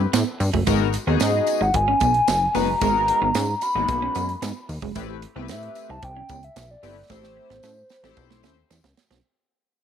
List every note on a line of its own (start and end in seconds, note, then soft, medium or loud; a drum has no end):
0.00 0.14 E5 loud
0.13 0.23 A2 loud
0.13 0.24 B3 medium
0.13 snare loud
0.13 closed hi-hat loud
0.13 tambourine loud
0.40 0.50 G2 loud
0.40 muted clean electric guitar stroke soft
0.40 open hi-hat medium
0.40 tambourine medium
0.53 0.64 F#1 loud
0.53 0.64 A3 medium
0.53 kick medium
0.67 0.97 G#1 loud
0.67 0.87 G#3 medium
0.67 0.78 G#3 medium
0.67 0.87 B3 medium
0.67 0.87 D#4 medium
0.67 0.87 F#4 medium
0.67 0.87 A#4 loud
0.67 kick loud
0.67 closed hi-hat loud
0.67 tambourine medium
0.93 muted clean electric guitar stroke medium
0.93 closed hi-hat medium
0.93 tambourine soft
1.07 1.17 D#2 loud
1.07 1.60 G#3 medium
1.07 1.61 B3 medium
1.07 1.18 B3 medium
1.07 1.61 D#4 medium
1.07 1.61 F#4 medium
1.07 1.61 G#4 medium
1.20 1.41 G#2 loud
1.20 1.31 C#4 medium
1.20 1.64 D#5 medium
1.20 snare loud
1.20 closed hi-hat medium
1.20 tambourine medium
1.47 muted clean electric guitar stroke soft
1.47 closed hi-hat medium
1.47 tambourine medium
1.61 1.71 G#1 medium
1.61 1.71 D#4 medium
1.61 1.77 F#5 loud
1.74 1.94 G#1 loud
1.74 2.57 G#5 loud
1.74 muted clean electric guitar stroke soft
1.74 kick loud
1.74 closed hi-hat medium
1.88 1.98 C#4 medium
2.00 2.21 B1 medium
2.00 2.12 B3 medium
2.00 kick medium
2.00 closed hi-hat medium
2.00 tambourine medium
2.14 closed hi-hat medium
2.28 2.48 F#1 loud
2.28 snare loud
2.28 closed hi-hat medium
2.28 tambourine loud
2.54 2.75 F#1 medium
2.54 2.68 G#3 medium
2.54 2.68 B3 medium
2.54 2.65 B3 medium
2.54 2.68 D#4 medium
2.54 2.68 F#4 medium
2.54 2.68 B4 medium
2.54 3.64 A#5 loud
2.54 open hi-hat medium
2.54 tambourine medium
2.81 3.11 G#1 loud
2.81 3.21 G#3 medium
2.81 2.92 G#3 medium
2.81 3.21 B3 medium
2.81 3.21 D#4 medium
2.81 3.22 F#4 medium
2.81 3.22 A#4 medium
2.81 kick loud
2.81 closed hi-hat loud
2.81 tambourine medium
3.08 muted clean electric guitar stroke medium
3.08 closed hi-hat medium
3.22 3.32 G#1 loud
3.22 3.32 B3 medium
3.34 3.55 G#2 loud
3.34 3.46 C#4 loud
3.34 snare loud
3.34 closed hi-hat medium
3.34 tambourine loud
3.61 3.68 F#4 medium
3.61 3.69 A#4 medium
3.61 4.69 B5 loud
3.61 muted clean electric guitar stroke soft
3.61 closed hi-hat medium
3.61 tambourine medium
3.75 3.85 G#1 medium
3.75 4.28 G#3 medium
3.75 4.29 A#3 medium
3.75 4.29 B3 medium
3.75 4.29 D#4 medium
3.75 3.86 D#4 medium
3.75 4.29 F#4 medium
3.88 4.08 B1 loud
3.88 muted clean electric guitar stroke soft
3.88 kick loud
3.88 closed hi-hat loud
3.88 tambourine soft
4.02 4.13 C#4 medium
4.15 4.35 F#2 medium
4.15 4.26 B3 medium
4.15 closed hi-hat medium
4.15 tambourine medium
4.29 closed hi-hat medium
4.42 4.52 G#2 loud
4.42 4.53 B3 medium
4.42 snare loud
4.42 closed hi-hat loud
4.42 tambourine loud
4.69 4.79 D#2 medium
4.69 muted clean electric guitar stroke soft
4.69 open hi-hat medium
4.69 tambourine medium
4.82 4.92 F#1 loud
4.82 4.93 G#3 medium
4.82 kick medium
4.95 5.26 A1 loud
4.95 5.16 A3 medium
4.95 5.06 A3 medium
4.95 5.16 C4 medium
4.95 5.16 E4 medium
4.95 5.16 G4 medium
4.95 5.16 B4 loud
4.95 kick loud
4.95 closed hi-hat loud
4.95 tambourine medium
5.22 muted clean electric guitar stroke medium
5.22 closed hi-hat medium
5.35 5.51 C2 medium
5.35 5.89 A3 medium
5.35 5.47 B3 medium
5.35 5.89 C4 medium
5.35 5.89 E4 medium
5.35 5.89 G4 medium
5.35 5.89 B4 medium
5.48 5.69 A2 loud
5.48 5.60 C4 medium
5.48 5.92 E5 loud
5.48 snare loud
5.48 closed hi-hat medium
5.48 tambourine medium
5.63 closed hi-hat soft
5.75 muted clean electric guitar stroke soft
5.75 closed hi-hat medium
5.75 tambourine medium
5.89 5.99 C2 medium
5.89 6.00 D#4 medium
5.89 6.06 A5 loud
6.02 6.23 C2 loud
6.02 6.46 G5 loud
6.02 muted clean electric guitar stroke soft
6.02 kick loud
6.02 closed hi-hat medium
6.17 6.27 C#4 medium
6.29 6.50 C#2 medium
6.29 6.40 B3 medium
6.29 kick medium
6.29 closed hi-hat medium
6.29 tambourine medium
6.43 6.72 E5 loud
6.43 closed hi-hat medium
6.56 6.76 B1 loud
6.56 snare loud
6.56 closed hi-hat medium
6.56 tambourine loud
6.71 7.11 D5 loud
6.83 7.03 G1 medium
6.83 6.96 A3 medium
6.83 6.94 B3 medium
6.83 6.96 C4 medium
6.83 6.96 E4 medium
6.83 6.97 G4 medium
6.83 6.97 B4 medium
6.83 open hi-hat medium
6.83 tambourine medium
7.09 7.40 A1 loud
7.09 7.50 A3 medium
7.09 7.21 A3 medium
7.09 7.50 C4 medium
7.09 7.50 E4 medium
7.09 7.50 G4 medium
7.09 7.50 C5 medium
7.09 8.67 C5 loud
7.09 kick loud
7.09 snare medium
7.09 tambourine medium
7.23 snare medium
7.37 muted clean electric guitar stroke soft
7.50 7.60 A1 loud
7.50 7.61 B3 medium
7.50 snare medium
7.63 7.83 A2 loud
7.63 7.74 C#4 medium
7.63 snare medium
7.63 tambourine medium
7.89 7.97 G4 loud
7.89 7.97 B4 loud
7.89 muted clean electric guitar stroke soft
7.89 snare medium
7.89 tambourine medium
8.03 8.13 A1 medium
8.03 8.57 A3 medium
8.03 8.57 C4 medium
8.03 8.14 C4 medium
8.03 8.57 E4 medium
8.03 8.57 G4 medium
8.03 8.10 A4 medium
8.03 snare medium
8.10 8.60 C5 loud
8.17 8.45 B1 loud
8.17 muted clean electric guitar stroke soft
8.17 kick loud
8.17 tambourine soft
8.30 8.41 A3 medium
8.30 snare medium
8.43 8.64 D#2 medium
8.43 8.54 C#4 medium
8.43 snare loud
8.43 tambourine medium
8.70 8.80 E2 medium
8.70 8.81 C4 medium
8.70 snare loud
8.70 tambourine loud
8.84 8.94 C#2 medium
8.84 snare loud
8.97 muted clean electric guitar stroke soft
8.97 snare loud
8.97 tambourine medium
9.10 9.21 B1 medium
9.10 9.21 C4 medium
9.10 snare loud